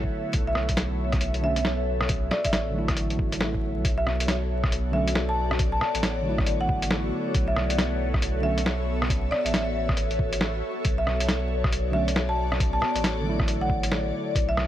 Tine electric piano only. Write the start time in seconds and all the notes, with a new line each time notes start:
Already playing: D3 F#3 A3 E4
1.41 D3 F#3 A3 C#4
2.71 D3 F#3
2.76 A3 E4
4.92 D3 F#3 A3
4.96 C#4
6.22 D3 F#3
6.27 A3 E4
8.41 D3 F#3 A3
8.46 C#4
11.92 D3 F#3 A3
11.96 C#4
13.21 D3 F#3
13.26 A3 E4